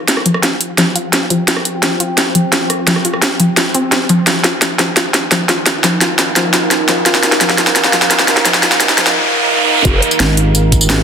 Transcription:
Already playing: ambient pad F4 C5 G5
0.08 snare, closed hi-hat
0.17 cross-stick
0.26 synth arpeggio sound F3, closed hi-hat
0.34 cross-stick
0.43 synth arpeggio sound F4, snare, closed hi-hat
0.61 closed hi-hat
0.78 synth arpeggio sound F3, snare, closed hi-hat
0.96 synth arpeggio sound F4, closed hi-hat
1.13 snare, closed hi-hat
1.30 synth arpeggio sound F3, closed hi-hat
1.48 synth arpeggio sound F4, snare, closed hi-hat
1.57 cross-stick
1.65 closed hi-hat
1.83 synth arpeggio sound F3, snare, closed hi-hat
2.00 synth arpeggio sound F4, closed hi-hat
2.18 snare, closed hi-hat
2.35 synth arpeggio sound F3, closed hi-hat
2.52 synth arpeggio sound F4, snare, closed hi-hat
2.70 cross-stick, closed hi-hat
2.87 synth arpeggio sound F3, snare, closed hi-hat
2.96 cross-stick
3.05 synth arpeggio sound F4, closed hi-hat
3.14 cross-stick
3.22 snare, closed hi-hat
3.40 synth arpeggio sound F3, closed hi-hat
3.57 synth arpeggio sound F4, snare, closed hi-hat
3.75 synth arpeggio sound C4, closed hi-hat
3.92 synth arpeggio sound C4, snare, closed hi-hat
4.09 synth arpeggio sound F3, closed hi-hat
4.27 synth arpeggio sound F3, ambient pad D#4 A#4 F5, snare, closed hi-hat, riser
4.44 synth arpeggio sound F4, snare, closed hi-hat
4.62 snare, closed hi-hat
4.79 synth arpeggio sound F3, snare, closed hi-hat
4.97 synth arpeggio sound F4, snare, closed hi-hat
5.14 snare, closed hi-hat
5.31 synth arpeggio sound F3, snare, closed hi-hat
5.49 synth arpeggio sound F4, snare, closed hi-hat
5.66 snare, closed hi-hat
5.84 synth arpeggio sound F3, snare, closed hi-hat
6.01 synth arpeggio sound F4, snare, closed hi-hat
6.19 snare, closed hi-hat
6.36 synth arpeggio sound F3, snare, closed hi-hat
6.53 synth arpeggio sound F4, snare, closed hi-hat
6.71 snare, closed hi-hat
6.88 synth arpeggio sound F3, snare, closed hi-hat
7.06 synth arpeggio sound F4, snare, closed hi-hat
7.15 snare
7.23 snare, closed hi-hat
7.32 snare
7.41 synth arpeggio sound F3, snare, closed hi-hat
7.49 snare
7.58 synth arpeggio sound F4, snare, closed hi-hat
7.67 snare
7.76 snare, closed hi-hat
7.84 snare
7.93 synth arpeggio sound F3, snare, closed hi-hat
8.02 snare
8.11 synth arpeggio sound F4, snare, closed hi-hat
8.19 snare
8.28 snare, closed hi-hat
8.37 snare
8.45 synth arpeggio sound F3, snare, closed hi-hat
8.54 snare
8.63 synth arpeggio sound F4, snare, closed hi-hat
8.72 snare
8.80 snare, closed hi-hat
8.89 snare
8.98 synth arpeggio sound F3, snare, closed hi-hat
9.06 snare
9.85 wobble bass F1, ambient pad F4 G4 G#4, kick, closed hi-hat, tambourine
10.02 closed hi-hat
10.11 tambourine
10.20 fm bass G#1, snare, closed hi-hat
10.37 closed hi-hat
10.55 closed hi-hat, tambourine
10.72 kick, closed hi-hat, tambourine
10.81 tambourine
10.90 snare, closed hi-hat, tambourine

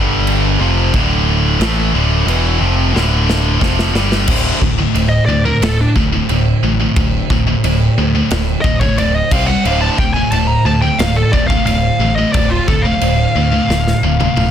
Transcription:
Already playing: picked electric bass G1, distorted electric guitar G2 D3 G3
0.27 china
0.59 picked electric bass F1, distorted electric guitar F2 C3 F3
0.94 picked electric bass D1, distorted electric guitar D2 A2 D3, kick, china
1.60 picked electric bass A1, distorted electric guitar A2 E3 A3, snare, china
1.93 picked electric bass D1, distorted electric guitar D2 A2 D3
2.26 picked electric bass E1, distorted electric guitar E2 B2 E3, china
2.59 picked electric bass F1, distorted electric guitar F2 C3 F3
2.93 picked electric bass D1, distorted electric guitar D2 A2 D3, snare
3.29 snare
3.61 picked electric bass F1, distorted electric guitar F2 C3 F3, kick, snare
3.79 snare
3.93 picked electric bass G1, distorted electric guitar G2 D3 G3, snare
4.12 snare
4.28 picked electric bass D1, distorted electric guitar D2 A2 D3, kick, crash
4.61 picked electric bass D1, distorted electric guitar D2 A2, kick
4.78 distorted electric guitar D2 A2
4.95 picked electric bass D1, distorted electric guitar D2 A2, crash
5.09 lead electric guitar D#5
5.26 picked electric bass D2, distorted electric guitar D2 A2, lead electric guitar D5
5.45 distorted electric guitar D2 A2, lead electric guitar A#4
5.61 picked electric bass D1, distorted electric guitar D2 A2, lead electric guitar A4, snare, crash
5.81 lead electric guitar D4
5.96 picked electric bass D1, distorted electric guitar D2 A2, kick
6.12 distorted electric guitar D2 A2
6.29 picked electric bass D1, distorted electric guitar D2 A2, crash
6.63 picked electric bass A1, distorted electric guitar D2 A2
6.80 distorted electric guitar D2 A2
6.96 picked electric bass D1, distorted electric guitar D2 A2, kick, crash
7.30 picked electric bass D1, distorted electric guitar D2 A2, kick
7.47 distorted electric guitar D2 A2
7.64 picked electric bass D1, distorted electric guitar D2 A2, crash
7.98 picked electric bass D2, distorted electric guitar D2 A2
8.15 distorted electric guitar D2 A2
8.30 picked electric bass D1, distorted electric guitar D2 A2, snare, crash
8.61 picked electric bass D1, distorted electric guitar D2 A2, lead electric guitar D#5, kick
8.80 distorted electric guitar D2 A2, lead electric guitar C#5, kick
8.97 picked electric bass D1, distorted electric guitar D2 A2, lead electric guitar D5, crash
9.16 lead electric guitar D#5
9.31 picked electric bass C2, distorted electric guitar C3 G3 C4, lead electric guitar F5, kick, crash
9.47 distorted electric guitar C3 G3, lead electric guitar F#5
9.65 picked electric bass D1, distorted electric guitar D2 A2 D3, lead electric guitar F5, crash
9.81 lead electric guitar A5
9.98 picked electric bass D1, distorted electric guitar D2 A2, lead electric guitar G5, kick
10.13 distorted electric guitar D2 A2, lead electric guitar G#5
10.32 picked electric bass D1, distorted electric guitar D2 A2, lead electric guitar A5, crash
10.47 lead electric guitar A#5
10.65 picked electric bass D2, distorted electric guitar D2 A2, lead electric guitar A5
10.82 distorted electric guitar D2 A2, lead electric guitar G5
10.99 picked electric bass D1, distorted electric guitar D2 A2, lead electric guitar F5, snare, crash
11.16 lead electric guitar A4
11.32 picked electric bass D1, distorted electric guitar D2 A2, lead electric guitar D5, kick
11.47 distorted electric guitar D2 A2, lead electric guitar F5, kick
11.66 picked electric bass D1, distorted electric guitar D2 A2, lead electric guitar F5, crash
11.99 picked electric bass A1, distorted electric guitar D2 A2
12.16 distorted electric guitar D2 A2, lead electric guitar D#5
12.33 picked electric bass D1, distorted electric guitar D2 A2, lead electric guitar D5, kick, crash
12.49 lead electric guitar F4
12.68 picked electric bass D1, distorted electric guitar D2 A2, lead electric guitar A4, kick
12.82 distorted electric guitar D2 A2, lead electric guitar F5
13.01 picked electric bass D1, distorted electric guitar D2 A2, crash
13.35 picked electric bass D2, distorted electric guitar D2 A2
13.52 distorted electric guitar D2 A2
13.69 picked electric bass D1, distorted electric guitar D2 A2, snare
13.87 snare
14.03 picked electric bass D1, distorted electric guitar D2 A2
14.20 distorted electric guitar D2 A2, high tom
14.36 picked electric bass D1, distorted electric guitar D2 A2, mid tom

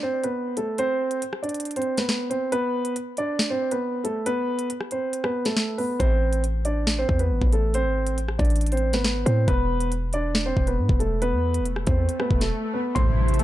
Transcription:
0.03 grand piano C4 C5
0.24 grand piano B3 B4, closed hi-hat
0.57 grand piano A3 A4, closed hi-hat
0.78 grand piano C4 C5, closed hi-hat
1.11 closed hi-hat
1.22 closed hi-hat
1.33 cross-stick
1.43 grand piano D4 D5, closed hi-hat
1.49 closed hi-hat
1.54 closed hi-hat
1.60 closed hi-hat
1.65 closed hi-hat
1.71 closed hi-hat
1.76 grand piano C4 C5, closed hi-hat
1.82 closed hi-hat
1.98 grand piano B3 B4, snare, closed hi-hat
2.09 snare
2.30 grand piano C4 C5, closed hi-hat
2.52 grand piano B3 B4, closed hi-hat
2.85 closed hi-hat
2.96 closed hi-hat
3.17 grand piano D4 D5, closed hi-hat
3.39 snare
3.50 grand piano C4 C5
3.71 grand piano B3 B4, closed hi-hat
4.04 grand piano A3 A4, closed hi-hat
4.26 grand piano B3 B4, closed hi-hat
4.59 closed hi-hat
4.70 closed hi-hat
4.81 cross-stick
4.91 grand piano C4 C5, closed hi-hat
5.13 closed hi-hat
5.24 grand piano B3 B4, cross-stick
5.45 grand piano A3 A4, snare, closed hi-hat
5.57 snare
5.78 grand piano B3 B4, open hi-hat
6.00 808-style bass A1, grand piano C4 C5, kick, closed hi-hat
6.33 closed hi-hat
6.44 closed hi-hat
6.65 grand piano D4 D5, closed hi-hat
6.87 snare
6.99 grand piano C4 C5
7.09 808-style bass E2, kick
7.19 grand piano B3 B4, closed hi-hat
7.31 808-style bass G#1
7.42 808-style bass A1, kick
7.53 grand piano A3 A4, closed hi-hat
7.74 grand piano C4 C5, closed hi-hat
7.85 808-style bass G#1
8.07 closed hi-hat
8.12 808-style bass A1
8.18 closed hi-hat
8.28 cross-stick
8.39 808-style bass A1, grand piano D4 D5, kick, closed hi-hat
8.45 closed hi-hat
8.50 closed hi-hat
8.56 closed hi-hat
8.61 closed hi-hat
8.66 closed hi-hat
8.72 grand piano C4 C5, closed hi-hat
8.77 closed hi-hat
8.93 808-style bass G#1, grand piano B3 B4, snare, closed hi-hat
9.04 snare
9.26 808-style bass A2, grand piano C4 C5, closed hi-hat
9.48 808-style bass E1, grand piano B3 B4, kick, closed hi-hat, swell
9.80 closed hi-hat
9.92 closed hi-hat
10.13 grand piano D4 D5, closed hi-hat
10.35 snare
10.46 grand piano C4 C5
10.57 808-style bass E1, kick
10.67 grand piano B3 B4, closed hi-hat
10.78 808-style bass G#2
10.89 808-style bass E1, kick
11.00 grand piano A3 A4, closed hi-hat
11.22 grand piano B3 B4, closed hi-hat
11.33 808-style bass E2
11.54 closed hi-hat
11.60 808-style bass E1
11.66 closed hi-hat
11.76 cross-stick
11.87 808-style bass E2, grand piano C4 C5, kick, closed hi-hat
12.09 closed hi-hat
12.19 grand piano B3 B4, cross-stick
12.31 808-style bass E1, kick
12.41 grand piano A3 A4, snare, closed hi-hat
12.74 grand piano B3 B4
12.95 808-style bass A1, synth pluck A2, analog synth pad C3 A3 E4, grand piano C5 C6, kick, closed hi-hat, impact
13.28 closed hi-hat
13.34 closed hi-hat
13.39 synth pluck A3, closed hi-hat

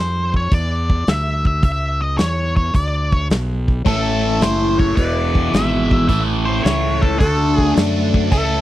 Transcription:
Already playing: fingered electric bass F2
0.00 lead electric guitar C5
0.34 lead electric guitar C#5, kick
0.52 fingered electric bass E2, lead electric guitar D5, kick, open hi-hat
0.90 kick
1.07 fingered electric bass D2, lead electric guitar E5, snare, open hi-hat
1.45 lead electric guitar E5, kick
1.63 fingered electric bass C#2, lead electric guitar E5, kick, open hi-hat
2.01 lead electric guitar D#5
2.18 fingered electric bass E2, lead electric guitar C#5, snare, open hi-hat
2.56 lead electric guitar C#5, kick
2.74 fingered electric bass D2, lead electric guitar D5, kick, open hi-hat
3.12 lead electric guitar C#5, kick
3.30 fingered electric bass B1, snare, open hi-hat
3.68 kick
3.85 fingered electric bass A1, overdriven electric guitar A2 E3 A3, tonewheel organ A3 C#4 E4 A4, lead electric guitar A4, kick, open hi-hat
4.41 fingered electric bass F#1, lead electric guitar C5, snare, open hi-hat
4.79 lead electric guitar C#5, kick
4.97 fingered electric bass E1, overdriven electric guitar E2 B2 E3, tonewheel organ G#3 B3 E4 G#4, lead electric guitar D5, kick, open hi-hat
5.35 kick
5.53 fingered electric bass G#1, lead electric guitar E5, snare, open hi-hat
5.91 kick
6.08 fingered electric bass A1, overdriven electric guitar A2 E3 A3, tonewheel organ A3 C#4 E4 A4, lead electric guitar E5, kick, open hi-hat
6.45 lead electric guitar C5
6.64 fingered electric bass C#2, lead electric guitar C#5, snare, open hi-hat
7.01 lead electric guitar A4, kick
7.19 fingered electric bass D2, overdriven electric guitar D3 A3 D4, tonewheel organ A3 D4 F#4 A4, lead electric guitar A4, kick, open hi-hat
7.57 lead electric guitar G#4, kick
7.77 fingered electric bass F#2, snare, open hi-hat
8.14 kick
8.30 fingered electric bass C#2, overdriven electric guitar A2 E3, tonewheel organ A3 C#4 E4 A4, lead electric guitar A4, kick, open hi-hat
8.34 overdriven electric guitar A3

